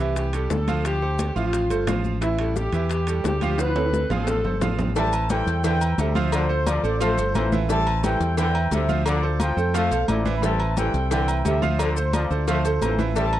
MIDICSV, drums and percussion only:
0, 0, Header, 1, 2, 480
1, 0, Start_track
1, 0, Key_signature, 0, "minor"
1, 0, Tempo, 342075
1, 1183, Time_signature, 4, 2, 24, 8
1, 18799, End_track
2, 0, Start_track
2, 0, Title_t, "Drums"
2, 226, Note_on_c, 9, 63, 38
2, 228, Note_on_c, 9, 65, 70
2, 229, Note_on_c, 9, 70, 68
2, 230, Note_on_c, 9, 60, 67
2, 367, Note_off_c, 9, 63, 0
2, 368, Note_off_c, 9, 65, 0
2, 370, Note_off_c, 9, 60, 0
2, 370, Note_off_c, 9, 70, 0
2, 465, Note_on_c, 9, 65, 92
2, 466, Note_on_c, 9, 63, 34
2, 473, Note_on_c, 9, 70, 60
2, 605, Note_off_c, 9, 65, 0
2, 607, Note_off_c, 9, 63, 0
2, 613, Note_off_c, 9, 70, 0
2, 705, Note_on_c, 9, 60, 65
2, 705, Note_on_c, 9, 61, 81
2, 707, Note_on_c, 9, 66, 82
2, 711, Note_on_c, 9, 63, 82
2, 711, Note_on_c, 9, 70, 65
2, 845, Note_off_c, 9, 60, 0
2, 845, Note_off_c, 9, 61, 0
2, 848, Note_off_c, 9, 66, 0
2, 851, Note_off_c, 9, 70, 0
2, 852, Note_off_c, 9, 63, 0
2, 950, Note_on_c, 9, 65, 69
2, 951, Note_on_c, 9, 63, 85
2, 956, Note_on_c, 9, 70, 29
2, 1091, Note_off_c, 9, 63, 0
2, 1091, Note_off_c, 9, 65, 0
2, 1096, Note_off_c, 9, 70, 0
2, 1186, Note_on_c, 9, 63, 35
2, 1191, Note_on_c, 9, 65, 92
2, 1192, Note_on_c, 9, 60, 66
2, 1196, Note_on_c, 9, 70, 72
2, 1327, Note_off_c, 9, 63, 0
2, 1331, Note_off_c, 9, 65, 0
2, 1333, Note_off_c, 9, 60, 0
2, 1336, Note_off_c, 9, 70, 0
2, 1430, Note_on_c, 9, 63, 36
2, 1434, Note_on_c, 9, 60, 34
2, 1570, Note_off_c, 9, 63, 0
2, 1575, Note_off_c, 9, 60, 0
2, 1669, Note_on_c, 9, 60, 61
2, 1669, Note_on_c, 9, 63, 93
2, 1671, Note_on_c, 9, 70, 72
2, 1673, Note_on_c, 9, 65, 91
2, 1673, Note_on_c, 9, 66, 58
2, 1809, Note_off_c, 9, 60, 0
2, 1809, Note_off_c, 9, 63, 0
2, 1811, Note_off_c, 9, 70, 0
2, 1813, Note_off_c, 9, 65, 0
2, 1813, Note_off_c, 9, 66, 0
2, 1913, Note_on_c, 9, 70, 30
2, 1915, Note_on_c, 9, 63, 34
2, 2054, Note_off_c, 9, 70, 0
2, 2055, Note_off_c, 9, 63, 0
2, 2148, Note_on_c, 9, 60, 64
2, 2150, Note_on_c, 9, 63, 34
2, 2150, Note_on_c, 9, 65, 68
2, 2158, Note_on_c, 9, 70, 73
2, 2288, Note_off_c, 9, 60, 0
2, 2290, Note_off_c, 9, 63, 0
2, 2291, Note_off_c, 9, 65, 0
2, 2298, Note_off_c, 9, 70, 0
2, 2389, Note_on_c, 9, 60, 36
2, 2390, Note_on_c, 9, 63, 36
2, 2391, Note_on_c, 9, 65, 69
2, 2395, Note_on_c, 9, 70, 60
2, 2529, Note_off_c, 9, 60, 0
2, 2531, Note_off_c, 9, 63, 0
2, 2532, Note_off_c, 9, 65, 0
2, 2536, Note_off_c, 9, 70, 0
2, 2628, Note_on_c, 9, 65, 100
2, 2628, Note_on_c, 9, 66, 85
2, 2629, Note_on_c, 9, 63, 80
2, 2630, Note_on_c, 9, 60, 68
2, 2630, Note_on_c, 9, 61, 80
2, 2634, Note_on_c, 9, 70, 66
2, 2768, Note_off_c, 9, 65, 0
2, 2768, Note_off_c, 9, 66, 0
2, 2769, Note_off_c, 9, 63, 0
2, 2770, Note_off_c, 9, 60, 0
2, 2770, Note_off_c, 9, 61, 0
2, 2774, Note_off_c, 9, 70, 0
2, 2868, Note_on_c, 9, 70, 28
2, 2870, Note_on_c, 9, 60, 33
2, 2870, Note_on_c, 9, 63, 85
2, 3008, Note_off_c, 9, 70, 0
2, 3010, Note_off_c, 9, 60, 0
2, 3011, Note_off_c, 9, 63, 0
2, 3111, Note_on_c, 9, 65, 71
2, 3113, Note_on_c, 9, 70, 73
2, 3115, Note_on_c, 9, 60, 69
2, 3117, Note_on_c, 9, 63, 35
2, 3251, Note_off_c, 9, 65, 0
2, 3253, Note_off_c, 9, 70, 0
2, 3255, Note_off_c, 9, 60, 0
2, 3258, Note_off_c, 9, 63, 0
2, 3347, Note_on_c, 9, 65, 96
2, 3487, Note_off_c, 9, 65, 0
2, 3587, Note_on_c, 9, 66, 63
2, 3589, Note_on_c, 9, 63, 60
2, 3595, Note_on_c, 9, 70, 67
2, 3601, Note_on_c, 9, 60, 60
2, 3727, Note_off_c, 9, 66, 0
2, 3729, Note_off_c, 9, 63, 0
2, 3736, Note_off_c, 9, 70, 0
2, 3741, Note_off_c, 9, 60, 0
2, 3824, Note_on_c, 9, 65, 71
2, 3833, Note_on_c, 9, 63, 34
2, 3841, Note_on_c, 9, 70, 29
2, 3964, Note_off_c, 9, 65, 0
2, 3973, Note_off_c, 9, 63, 0
2, 3981, Note_off_c, 9, 70, 0
2, 4063, Note_on_c, 9, 65, 68
2, 4070, Note_on_c, 9, 63, 36
2, 4078, Note_on_c, 9, 60, 67
2, 4078, Note_on_c, 9, 70, 74
2, 4203, Note_off_c, 9, 65, 0
2, 4211, Note_off_c, 9, 63, 0
2, 4218, Note_off_c, 9, 70, 0
2, 4219, Note_off_c, 9, 60, 0
2, 4306, Note_on_c, 9, 65, 94
2, 4310, Note_on_c, 9, 63, 34
2, 4323, Note_on_c, 9, 70, 58
2, 4447, Note_off_c, 9, 65, 0
2, 4450, Note_off_c, 9, 63, 0
2, 4463, Note_off_c, 9, 70, 0
2, 4548, Note_on_c, 9, 66, 85
2, 4549, Note_on_c, 9, 63, 79
2, 4558, Note_on_c, 9, 70, 65
2, 4562, Note_on_c, 9, 60, 69
2, 4562, Note_on_c, 9, 61, 79
2, 4688, Note_off_c, 9, 66, 0
2, 4690, Note_off_c, 9, 63, 0
2, 4699, Note_off_c, 9, 70, 0
2, 4702, Note_off_c, 9, 60, 0
2, 4702, Note_off_c, 9, 61, 0
2, 4789, Note_on_c, 9, 65, 72
2, 4795, Note_on_c, 9, 63, 87
2, 4805, Note_on_c, 9, 70, 28
2, 4929, Note_off_c, 9, 65, 0
2, 4935, Note_off_c, 9, 63, 0
2, 4945, Note_off_c, 9, 70, 0
2, 5028, Note_on_c, 9, 65, 101
2, 5037, Note_on_c, 9, 60, 66
2, 5041, Note_on_c, 9, 70, 73
2, 5042, Note_on_c, 9, 63, 35
2, 5168, Note_off_c, 9, 65, 0
2, 5178, Note_off_c, 9, 60, 0
2, 5181, Note_off_c, 9, 70, 0
2, 5182, Note_off_c, 9, 63, 0
2, 5273, Note_on_c, 9, 65, 101
2, 5275, Note_on_c, 9, 63, 36
2, 5283, Note_on_c, 9, 60, 34
2, 5413, Note_off_c, 9, 65, 0
2, 5416, Note_off_c, 9, 63, 0
2, 5423, Note_off_c, 9, 60, 0
2, 5515, Note_on_c, 9, 63, 69
2, 5523, Note_on_c, 9, 60, 59
2, 5527, Note_on_c, 9, 70, 74
2, 5655, Note_off_c, 9, 63, 0
2, 5664, Note_off_c, 9, 60, 0
2, 5668, Note_off_c, 9, 70, 0
2, 5755, Note_on_c, 9, 66, 78
2, 5757, Note_on_c, 9, 64, 72
2, 5765, Note_on_c, 9, 70, 29
2, 5896, Note_off_c, 9, 66, 0
2, 5897, Note_off_c, 9, 64, 0
2, 5905, Note_off_c, 9, 70, 0
2, 5992, Note_on_c, 9, 66, 96
2, 5998, Note_on_c, 9, 70, 74
2, 6000, Note_on_c, 9, 60, 67
2, 6132, Note_off_c, 9, 66, 0
2, 6138, Note_off_c, 9, 70, 0
2, 6141, Note_off_c, 9, 60, 0
2, 6237, Note_on_c, 9, 66, 73
2, 6242, Note_on_c, 9, 64, 72
2, 6245, Note_on_c, 9, 60, 35
2, 6377, Note_off_c, 9, 66, 0
2, 6382, Note_off_c, 9, 64, 0
2, 6386, Note_off_c, 9, 60, 0
2, 6474, Note_on_c, 9, 66, 75
2, 6476, Note_on_c, 9, 64, 94
2, 6477, Note_on_c, 9, 60, 66
2, 6477, Note_on_c, 9, 61, 80
2, 6478, Note_on_c, 9, 70, 70
2, 6614, Note_off_c, 9, 66, 0
2, 6616, Note_off_c, 9, 64, 0
2, 6617, Note_off_c, 9, 60, 0
2, 6617, Note_off_c, 9, 61, 0
2, 6618, Note_off_c, 9, 70, 0
2, 6716, Note_on_c, 9, 66, 87
2, 6717, Note_on_c, 9, 64, 100
2, 6718, Note_on_c, 9, 60, 35
2, 6720, Note_on_c, 9, 70, 30
2, 6857, Note_off_c, 9, 66, 0
2, 6858, Note_off_c, 9, 60, 0
2, 6858, Note_off_c, 9, 64, 0
2, 6861, Note_off_c, 9, 70, 0
2, 6957, Note_on_c, 9, 70, 80
2, 6962, Note_on_c, 9, 56, 110
2, 6963, Note_on_c, 9, 63, 37
2, 7097, Note_off_c, 9, 70, 0
2, 7103, Note_off_c, 9, 56, 0
2, 7103, Note_off_c, 9, 63, 0
2, 7196, Note_on_c, 9, 70, 65
2, 7197, Note_on_c, 9, 68, 100
2, 7198, Note_on_c, 9, 63, 37
2, 7336, Note_off_c, 9, 70, 0
2, 7337, Note_off_c, 9, 68, 0
2, 7338, Note_off_c, 9, 63, 0
2, 7432, Note_on_c, 9, 70, 75
2, 7434, Note_on_c, 9, 56, 76
2, 7438, Note_on_c, 9, 63, 106
2, 7439, Note_on_c, 9, 68, 86
2, 7573, Note_off_c, 9, 70, 0
2, 7575, Note_off_c, 9, 56, 0
2, 7579, Note_off_c, 9, 63, 0
2, 7579, Note_off_c, 9, 68, 0
2, 7680, Note_on_c, 9, 70, 31
2, 7681, Note_on_c, 9, 63, 37
2, 7684, Note_on_c, 9, 56, 74
2, 7821, Note_off_c, 9, 63, 0
2, 7821, Note_off_c, 9, 70, 0
2, 7825, Note_off_c, 9, 56, 0
2, 7913, Note_on_c, 9, 70, 75
2, 7915, Note_on_c, 9, 68, 72
2, 7916, Note_on_c, 9, 56, 105
2, 7920, Note_on_c, 9, 63, 37
2, 8053, Note_off_c, 9, 70, 0
2, 8055, Note_off_c, 9, 68, 0
2, 8056, Note_off_c, 9, 56, 0
2, 8061, Note_off_c, 9, 63, 0
2, 8157, Note_on_c, 9, 68, 116
2, 8159, Note_on_c, 9, 70, 64
2, 8160, Note_on_c, 9, 63, 36
2, 8297, Note_off_c, 9, 68, 0
2, 8300, Note_off_c, 9, 63, 0
2, 8300, Note_off_c, 9, 70, 0
2, 8393, Note_on_c, 9, 63, 82
2, 8397, Note_on_c, 9, 68, 88
2, 8401, Note_on_c, 9, 56, 68
2, 8401, Note_on_c, 9, 70, 70
2, 8534, Note_off_c, 9, 63, 0
2, 8537, Note_off_c, 9, 68, 0
2, 8541, Note_off_c, 9, 56, 0
2, 8541, Note_off_c, 9, 70, 0
2, 8632, Note_on_c, 9, 63, 87
2, 8642, Note_on_c, 9, 70, 30
2, 8772, Note_off_c, 9, 63, 0
2, 8782, Note_off_c, 9, 70, 0
2, 8873, Note_on_c, 9, 68, 113
2, 8876, Note_on_c, 9, 56, 110
2, 8881, Note_on_c, 9, 70, 80
2, 9013, Note_off_c, 9, 68, 0
2, 9016, Note_off_c, 9, 56, 0
2, 9021, Note_off_c, 9, 70, 0
2, 9115, Note_on_c, 9, 63, 36
2, 9255, Note_off_c, 9, 63, 0
2, 9353, Note_on_c, 9, 63, 99
2, 9355, Note_on_c, 9, 68, 118
2, 9359, Note_on_c, 9, 56, 69
2, 9360, Note_on_c, 9, 70, 77
2, 9494, Note_off_c, 9, 63, 0
2, 9495, Note_off_c, 9, 68, 0
2, 9499, Note_off_c, 9, 56, 0
2, 9501, Note_off_c, 9, 70, 0
2, 9602, Note_on_c, 9, 63, 37
2, 9605, Note_on_c, 9, 70, 32
2, 9742, Note_off_c, 9, 63, 0
2, 9746, Note_off_c, 9, 70, 0
2, 9831, Note_on_c, 9, 68, 71
2, 9835, Note_on_c, 9, 70, 71
2, 9838, Note_on_c, 9, 63, 37
2, 9844, Note_on_c, 9, 56, 106
2, 9971, Note_off_c, 9, 68, 0
2, 9975, Note_off_c, 9, 70, 0
2, 9978, Note_off_c, 9, 63, 0
2, 9984, Note_off_c, 9, 56, 0
2, 10077, Note_on_c, 9, 70, 67
2, 10082, Note_on_c, 9, 63, 37
2, 10085, Note_on_c, 9, 56, 75
2, 10217, Note_off_c, 9, 70, 0
2, 10222, Note_off_c, 9, 63, 0
2, 10226, Note_off_c, 9, 56, 0
2, 10312, Note_on_c, 9, 70, 68
2, 10318, Note_on_c, 9, 63, 86
2, 10318, Note_on_c, 9, 66, 79
2, 10318, Note_on_c, 9, 68, 118
2, 10326, Note_on_c, 9, 56, 70
2, 10452, Note_off_c, 9, 70, 0
2, 10458, Note_off_c, 9, 63, 0
2, 10458, Note_off_c, 9, 66, 0
2, 10458, Note_off_c, 9, 68, 0
2, 10466, Note_off_c, 9, 56, 0
2, 10557, Note_on_c, 9, 63, 86
2, 10559, Note_on_c, 9, 70, 31
2, 10698, Note_off_c, 9, 63, 0
2, 10699, Note_off_c, 9, 70, 0
2, 10797, Note_on_c, 9, 70, 78
2, 10803, Note_on_c, 9, 63, 36
2, 10805, Note_on_c, 9, 56, 111
2, 10937, Note_off_c, 9, 70, 0
2, 10944, Note_off_c, 9, 63, 0
2, 10945, Note_off_c, 9, 56, 0
2, 11040, Note_on_c, 9, 68, 109
2, 11045, Note_on_c, 9, 63, 37
2, 11180, Note_off_c, 9, 68, 0
2, 11185, Note_off_c, 9, 63, 0
2, 11279, Note_on_c, 9, 56, 74
2, 11279, Note_on_c, 9, 70, 75
2, 11280, Note_on_c, 9, 63, 99
2, 11281, Note_on_c, 9, 68, 91
2, 11419, Note_off_c, 9, 56, 0
2, 11419, Note_off_c, 9, 70, 0
2, 11420, Note_off_c, 9, 63, 0
2, 11422, Note_off_c, 9, 68, 0
2, 11515, Note_on_c, 9, 56, 75
2, 11519, Note_on_c, 9, 70, 31
2, 11522, Note_on_c, 9, 63, 34
2, 11655, Note_off_c, 9, 56, 0
2, 11659, Note_off_c, 9, 70, 0
2, 11662, Note_off_c, 9, 63, 0
2, 11751, Note_on_c, 9, 56, 106
2, 11755, Note_on_c, 9, 70, 77
2, 11760, Note_on_c, 9, 63, 37
2, 11761, Note_on_c, 9, 68, 73
2, 11891, Note_off_c, 9, 56, 0
2, 11895, Note_off_c, 9, 70, 0
2, 11900, Note_off_c, 9, 63, 0
2, 11901, Note_off_c, 9, 68, 0
2, 11996, Note_on_c, 9, 68, 115
2, 12001, Note_on_c, 9, 63, 35
2, 12136, Note_off_c, 9, 68, 0
2, 12141, Note_off_c, 9, 63, 0
2, 12227, Note_on_c, 9, 56, 72
2, 12235, Note_on_c, 9, 68, 87
2, 12237, Note_on_c, 9, 70, 70
2, 12242, Note_on_c, 9, 63, 85
2, 12368, Note_off_c, 9, 56, 0
2, 12376, Note_off_c, 9, 68, 0
2, 12378, Note_off_c, 9, 70, 0
2, 12383, Note_off_c, 9, 63, 0
2, 12475, Note_on_c, 9, 63, 90
2, 12476, Note_on_c, 9, 70, 29
2, 12616, Note_off_c, 9, 63, 0
2, 12616, Note_off_c, 9, 70, 0
2, 12708, Note_on_c, 9, 68, 115
2, 12711, Note_on_c, 9, 56, 104
2, 12723, Note_on_c, 9, 70, 76
2, 12848, Note_off_c, 9, 68, 0
2, 12852, Note_off_c, 9, 56, 0
2, 12864, Note_off_c, 9, 70, 0
2, 12952, Note_on_c, 9, 63, 34
2, 13093, Note_off_c, 9, 63, 0
2, 13186, Note_on_c, 9, 68, 116
2, 13187, Note_on_c, 9, 63, 95
2, 13192, Note_on_c, 9, 56, 73
2, 13199, Note_on_c, 9, 70, 76
2, 13326, Note_off_c, 9, 68, 0
2, 13327, Note_off_c, 9, 63, 0
2, 13332, Note_off_c, 9, 56, 0
2, 13340, Note_off_c, 9, 70, 0
2, 13434, Note_on_c, 9, 63, 37
2, 13445, Note_on_c, 9, 70, 31
2, 13575, Note_off_c, 9, 63, 0
2, 13585, Note_off_c, 9, 70, 0
2, 13672, Note_on_c, 9, 68, 76
2, 13673, Note_on_c, 9, 63, 38
2, 13677, Note_on_c, 9, 56, 103
2, 13681, Note_on_c, 9, 70, 78
2, 13812, Note_off_c, 9, 68, 0
2, 13813, Note_off_c, 9, 63, 0
2, 13817, Note_off_c, 9, 56, 0
2, 13822, Note_off_c, 9, 70, 0
2, 13909, Note_on_c, 9, 63, 35
2, 13913, Note_on_c, 9, 56, 74
2, 13917, Note_on_c, 9, 70, 62
2, 14049, Note_off_c, 9, 63, 0
2, 14053, Note_off_c, 9, 56, 0
2, 14058, Note_off_c, 9, 70, 0
2, 14147, Note_on_c, 9, 63, 87
2, 14148, Note_on_c, 9, 68, 110
2, 14152, Note_on_c, 9, 56, 68
2, 14153, Note_on_c, 9, 70, 71
2, 14288, Note_off_c, 9, 63, 0
2, 14288, Note_off_c, 9, 68, 0
2, 14292, Note_off_c, 9, 56, 0
2, 14294, Note_off_c, 9, 70, 0
2, 14389, Note_on_c, 9, 63, 87
2, 14397, Note_on_c, 9, 70, 29
2, 14530, Note_off_c, 9, 63, 0
2, 14537, Note_off_c, 9, 70, 0
2, 14632, Note_on_c, 9, 63, 36
2, 14635, Note_on_c, 9, 56, 107
2, 14639, Note_on_c, 9, 70, 74
2, 14772, Note_off_c, 9, 63, 0
2, 14776, Note_off_c, 9, 56, 0
2, 14779, Note_off_c, 9, 70, 0
2, 14869, Note_on_c, 9, 68, 107
2, 14870, Note_on_c, 9, 63, 36
2, 15009, Note_off_c, 9, 68, 0
2, 15010, Note_off_c, 9, 63, 0
2, 15111, Note_on_c, 9, 56, 68
2, 15111, Note_on_c, 9, 68, 88
2, 15113, Note_on_c, 9, 70, 77
2, 15117, Note_on_c, 9, 63, 96
2, 15251, Note_off_c, 9, 56, 0
2, 15251, Note_off_c, 9, 68, 0
2, 15254, Note_off_c, 9, 70, 0
2, 15257, Note_off_c, 9, 63, 0
2, 15353, Note_on_c, 9, 56, 68
2, 15354, Note_on_c, 9, 70, 32
2, 15357, Note_on_c, 9, 63, 37
2, 15493, Note_off_c, 9, 56, 0
2, 15494, Note_off_c, 9, 70, 0
2, 15497, Note_off_c, 9, 63, 0
2, 15591, Note_on_c, 9, 56, 105
2, 15592, Note_on_c, 9, 68, 75
2, 15596, Note_on_c, 9, 70, 80
2, 15597, Note_on_c, 9, 63, 39
2, 15731, Note_off_c, 9, 56, 0
2, 15732, Note_off_c, 9, 68, 0
2, 15736, Note_off_c, 9, 70, 0
2, 15737, Note_off_c, 9, 63, 0
2, 15829, Note_on_c, 9, 68, 108
2, 15832, Note_on_c, 9, 63, 35
2, 15834, Note_on_c, 9, 70, 67
2, 15969, Note_off_c, 9, 68, 0
2, 15973, Note_off_c, 9, 63, 0
2, 15974, Note_off_c, 9, 70, 0
2, 16068, Note_on_c, 9, 68, 92
2, 16074, Note_on_c, 9, 56, 69
2, 16074, Note_on_c, 9, 63, 87
2, 16074, Note_on_c, 9, 70, 72
2, 16209, Note_off_c, 9, 68, 0
2, 16214, Note_off_c, 9, 56, 0
2, 16214, Note_off_c, 9, 70, 0
2, 16215, Note_off_c, 9, 63, 0
2, 16310, Note_on_c, 9, 63, 87
2, 16316, Note_on_c, 9, 70, 30
2, 16451, Note_off_c, 9, 63, 0
2, 16456, Note_off_c, 9, 70, 0
2, 16548, Note_on_c, 9, 68, 117
2, 16549, Note_on_c, 9, 56, 105
2, 16555, Note_on_c, 9, 70, 76
2, 16688, Note_off_c, 9, 68, 0
2, 16690, Note_off_c, 9, 56, 0
2, 16695, Note_off_c, 9, 70, 0
2, 16786, Note_on_c, 9, 63, 36
2, 16794, Note_on_c, 9, 70, 67
2, 16927, Note_off_c, 9, 63, 0
2, 16934, Note_off_c, 9, 70, 0
2, 17025, Note_on_c, 9, 56, 70
2, 17026, Note_on_c, 9, 63, 95
2, 17030, Note_on_c, 9, 68, 110
2, 17033, Note_on_c, 9, 70, 74
2, 17165, Note_off_c, 9, 56, 0
2, 17166, Note_off_c, 9, 63, 0
2, 17170, Note_off_c, 9, 68, 0
2, 17173, Note_off_c, 9, 70, 0
2, 17265, Note_on_c, 9, 63, 35
2, 17273, Note_on_c, 9, 70, 33
2, 17406, Note_off_c, 9, 63, 0
2, 17413, Note_off_c, 9, 70, 0
2, 17507, Note_on_c, 9, 63, 39
2, 17509, Note_on_c, 9, 56, 99
2, 17509, Note_on_c, 9, 70, 79
2, 17511, Note_on_c, 9, 68, 74
2, 17647, Note_off_c, 9, 63, 0
2, 17649, Note_off_c, 9, 56, 0
2, 17649, Note_off_c, 9, 70, 0
2, 17652, Note_off_c, 9, 68, 0
2, 17743, Note_on_c, 9, 63, 37
2, 17746, Note_on_c, 9, 56, 78
2, 17754, Note_on_c, 9, 70, 66
2, 17884, Note_off_c, 9, 63, 0
2, 17887, Note_off_c, 9, 56, 0
2, 17894, Note_off_c, 9, 70, 0
2, 17982, Note_on_c, 9, 63, 84
2, 17984, Note_on_c, 9, 56, 69
2, 17989, Note_on_c, 9, 70, 74
2, 17993, Note_on_c, 9, 66, 74
2, 17993, Note_on_c, 9, 68, 107
2, 18122, Note_off_c, 9, 63, 0
2, 18124, Note_off_c, 9, 56, 0
2, 18129, Note_off_c, 9, 70, 0
2, 18134, Note_off_c, 9, 66, 0
2, 18134, Note_off_c, 9, 68, 0
2, 18222, Note_on_c, 9, 63, 92
2, 18232, Note_on_c, 9, 70, 29
2, 18362, Note_off_c, 9, 63, 0
2, 18373, Note_off_c, 9, 70, 0
2, 18463, Note_on_c, 9, 63, 37
2, 18465, Note_on_c, 9, 70, 73
2, 18472, Note_on_c, 9, 56, 113
2, 18603, Note_off_c, 9, 63, 0
2, 18605, Note_off_c, 9, 70, 0
2, 18612, Note_off_c, 9, 56, 0
2, 18702, Note_on_c, 9, 68, 106
2, 18707, Note_on_c, 9, 63, 35
2, 18799, Note_off_c, 9, 63, 0
2, 18799, Note_off_c, 9, 68, 0
2, 18799, End_track
0, 0, End_of_file